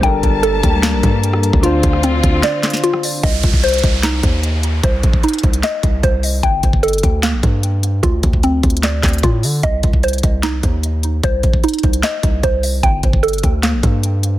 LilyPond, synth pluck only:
\new Staff \with { instrumentName = "Synth pluck" } { \time 4/4 \key c \dorian \tempo 4 = 150 g''4 a'4 bes2 | f'4 c'4 d''4 f'4 | ees''4 c''4 ees'2 | c''4 ees'4 ees''4 c''4 |
g''4 a'4 bes2 | f'4 c'4 d''4 f'4 | ees''4 c''4 ees'2 | c''4 ees'4 ees''4 c''4 |
g''4 a'4 bes2 | }